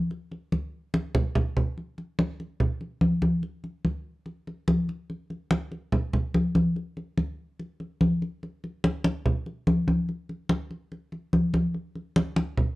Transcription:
0.11 high conga
0.31 high conga
0.52 high conga
0.94 high conga
1.14 low conga
1.35 low conga
1.56 low conga
1.77 high conga
1.98 high conga
2.19 high conga
2.40 high conga
2.60 high conga, low conga
2.81 high conga
3.01 high conga
3.22 high conga
3.43 high conga
3.64 high conga
3.85 high conga
4.26 high conga
4.47 high conga
4.68 high conga
4.89 high conga
5.10 high conga
5.30 high conga
5.51 high conga
5.71 high conga
5.92 high conga, low conga
6.13 high conga, low conga
6.34 high conga
6.55 high conga
6.76 high conga
6.97 high conga
7.17 high conga
7.60 high conga
7.80 high conga
8.01 high conga
8.22 high conga
8.43 high conga
8.64 high conga
8.84 high conga
9.04 high conga
9.26 high conga, low conga
9.46 high conga
9.67 high conga
9.88 high conga
10.09 high conga
10.29 high conga
10.49 high conga
10.71 high conga
10.92 high conga
11.12 high conga
11.33 high conga
11.53 high conga
11.74 high conga
11.95 high conga
12.16 high conga
12.36 high conga
12.57 high conga, low conga

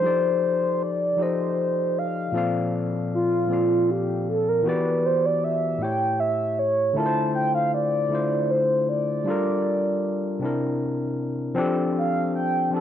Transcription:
Already playing: C5
0.01 F3 D#4 G4
0.05 A4 D5
0.83 D5
1.16 F3 D#4 G4
1.21 A4 C5 D#5
1.99 F5
2.32 A#2 F3 C4 A4
2.37 D5 F5
3.14 F4
3.47 A#2 F3 C4 A4
3.52 D5 F5
3.91 G4
4.29 A4
4.49 A#4
4.63 E3 B3 F#4
4.67 G4 B4 D5
5.06 C5
5.25 D5
5.44 E5
5.78 A2 A3 E4
5.82 G4 C#5 G5
6.20 E5
6.59 C#5
6.93 D3 A3 E4 A5
6.98 F4 A#4
7.06 C5
7.35 G5
7.55 F5
7.74 D5
8.09 D3 A3 E4
8.13 F4 C5
8.50 C5
8.89 D5
9.24 G3 D4 F4
9.29 A4 A#4
10.39 C3 C4 D4
10.44 E4 A#4
11.55 F3 C4 D4
11.59 G4 A4
11.98 F5
12.35 G5
12.70 F3 C4 D4 A5
12.75 G4 A4

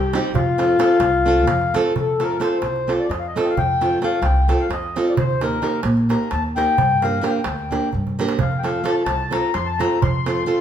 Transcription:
Already playing: C2 G4 G5
0.01 darbuka tek
0.13 G3 C4 D#4 G4 G5, darbuka tek
0.19 G4
0.25 G5, darbuka tek
0.31 F2 G4 F5
0.35 F4, darbuka dum
0.58 A3 C4 F4 A4, darbuka tek
0.69 darbuka tek
0.79 A3 C4 F4 A4, darbuka tek
1.00 C2, darbuka tek
1.14 darbuka tek
1.26 A3 C4 F4 A4
1.39 darbuka tek
1.47 F2, darbuka tek, darbuka dum
1.74 A3 C4 F4 A4, darbuka tek
1.85 darbuka tek
1.96 F2 A4, darbuka dum
2.20 A3 C4 F4 A4 A#4, darbuka tek
2.40 A3 C4 F4 A4 C5, darbuka tek
2.62 C2, darbuka tek
2.76 darbuka tek
2.87 A3 C4 F4 A4, darbuka tek
2.99 D5
3.09 F2 D#5, darbuka tek
3.19 F5
3.24 D#5, darbuka tek
3.36 A3 C4 F4 A4, darbuka tek
3.45 G5, darbuka tek
3.49 F5
3.57 F2 G5, darbuka dum
3.81 A3 C4 F4 A4, darbuka tek
4.02 A3 C4 F4 A4 F5, darbuka tek
4.22 C2 G5, darbuka tek
4.36 darbuka tek
4.48 A3 C4 F4 A4, darbuka tek
4.60 F5
4.69 F2 D#5, darbuka tek
4.84 darbuka tek
4.96 A3 C4 F4 A4, darbuka tek
5.08 D5, darbuka tek
5.17 D#2 C5, darbuka dum
5.30 darbuka tek
5.41 A#3 D#4 G4 A#4, darbuka tek
5.62 A#3 D#4 G4 A#4, darbuka tek
5.83 A#1, darbuka tek
5.97 darbuka tek
6.09 A#3 D#4 G4 A#4 A#5, darbuka tek
6.31 D#2 A5, darbuka tek
6.44 darbuka tek
6.56 A#3 D#4 G4 A#4 G5, darbuka tek
6.68 darbuka tek
6.78 G2, darbuka dum
6.91 darbuka tek
7.02 A#3 D4 G4 A#4 F5, darbuka tek
7.13 darbuka tek
7.21 A#3 D4 G4 A#4, darbuka tek
7.26 G5
7.30 F5
7.36 G5
7.44 D2, darbuka tek
7.59 darbuka tek
7.71 A#3 D4 G4 A#4, darbuka tek
7.93 G2, darbuka dum
8.07 darbuka dum
8.19 A#3 D4 G4 A#4, darbuka tek
8.29 darbuka tek
8.39 F2 F5, darbuka dum
8.51 darbuka tek
8.58 G5
8.63 A3 C4 F4 A4 F5, darbuka tek
8.84 A3 C4 F4 A4 A5, darbuka tek
9.04 C2 A5, darbuka tek
9.20 darbuka tek
9.31 A3 C4 F4 A4 A#5, darbuka tek
9.54 F2 C6, darbuka tek
9.66 A5, darbuka tek
9.79 A3 C4 F4 A4 A#5, darbuka tek
9.92 darbuka tek
10.02 F2 C6, darbuka dum
10.15 darbuka tek
10.26 A3 C4 F4 A4, darbuka tek
10.46 A3 C4 F4 A4

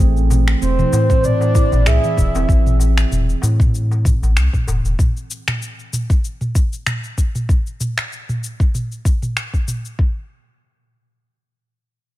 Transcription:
0.00 A1 A3, cabasa
0.17 cabasa
0.30 mid tom, darbuka ka, cabasa
0.48 finger snap, darbuka tek, cabasa
0.62 E1 C4 C5, cabasa
0.79 E3, mid tom, cabasa
0.93 A2, darbuka tek, cabasa
1.10 C4, kick, cabasa
1.24 D5, mid tom, cabasa
1.41 darbuka tek, cabasa
1.55 E4, kick, darbuka dum, cabasa
1.72 A1, mid tom, darbuka ka, cabasa
1.86 C2 G#4 E5, finger snap, darbuka dum, cabasa
2.04 E3, cabasa
2.17 E1, kick, mid tom, cabasa
2.35 E1 C4, darbuka tek, cabasa
2.49 A1, kick, cabasa
2.66 mid tom, cabasa
2.79 darbuka ka, cabasa
2.98 finger snap, cabasa
3.11 E1, mid tom, cabasa
3.30 cabasa
3.42 A2, darbuka ka, darbuka tek, cabasa
3.60 kick, mid tom, cabasa
3.75 cabasa
3.91 darbuka ka, cabasa
4.05 kick, mid tom, cabasa
4.22 A1, darbuka ka, cabasa
4.36 C2, finger snap, cabasa
4.53 kick, mid tom, cabasa
4.67 E1, darbuka tek, darbuka dum, cabasa
4.85 E1, darbuka ka, cabasa
4.99 kick, mid tom, cabasa
5.17 cabasa
5.31 cabasa
5.48 finger snap, mid tom, cabasa
5.62 cabasa
5.79 cabasa
5.93 mid tom, cabasa
6.10 kick, cabasa
6.24 cabasa
6.41 mid tom, cabasa
6.55 kick, cabasa
6.73 cabasa
6.86 finger snap, mid tom, cabasa
7.04 cabasa
7.18 kick, cabasa
7.35 mid tom, cabasa
7.49 kick, cabasa
7.67 cabasa
7.80 mid tom, cabasa
7.98 finger snap, cabasa
8.13 cabasa
8.29 mid tom, cabasa
8.44 cabasa
8.60 kick, cabasa
8.74 mid tom, cabasa
8.92 cabasa
9.05 kick, cabasa
9.22 mid tom, cabasa
9.37 finger snap, cabasa
9.54 kick, cabasa
9.68 mid tom, cabasa
9.85 cabasa
9.99 kick

